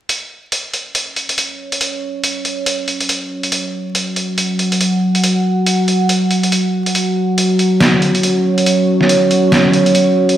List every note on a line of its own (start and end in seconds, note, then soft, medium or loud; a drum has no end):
0.09 10.37 F#4 medium
0.09 3.55 C#5 medium
0.09 closed hi-hat medium
0.52 closed hi-hat medium
0.74 closed hi-hat soft
0.95 closed hi-hat medium
1.16 closed hi-hat soft
1.29 closed hi-hat medium
1.38 closed hi-hat medium
1.72 closed hi-hat medium
1.81 closed hi-hat medium
2.24 closed hi-hat medium
2.45 closed hi-hat soft
2.66 closed hi-hat medium
2.88 closed hi-hat soft
3.01 closed hi-hat medium
3.09 closed hi-hat medium
3.43 closed hi-hat soft
3.52 6.97 F#5 medium
3.52 closed hi-hat medium
3.95 closed hi-hat medium
4.16 closed hi-hat soft
4.38 closed hi-hat medium
4.59 closed hi-hat soft
4.72 closed hi-hat soft
4.81 closed hi-hat medium
5.15 closed hi-hat soft
5.24 closed hi-hat medium
5.66 closed hi-hat medium
5.88 closed hi-hat soft
6.09 closed hi-hat medium
6.31 closed hi-hat soft
6.43 closed hi-hat soft
6.52 closed hi-hat medium
6.86 closed hi-hat soft
6.95 10.37 C#5 medium
6.95 closed hi-hat medium
7.38 closed hi-hat medium
7.59 closed hi-hat soft
7.81 snare loud
7.81 closed hi-hat medium
8.02 closed hi-hat soft
8.15 closed hi-hat soft
8.23 closed hi-hat medium
8.58 closed hi-hat soft
8.66 closed hi-hat medium
9.01 snare soft
9.09 closed hi-hat medium
9.31 closed hi-hat soft
9.52 snare loud
9.52 closed hi-hat medium
9.73 closed hi-hat soft
9.86 closed hi-hat soft
9.95 closed hi-hat medium
10.29 closed hi-hat soft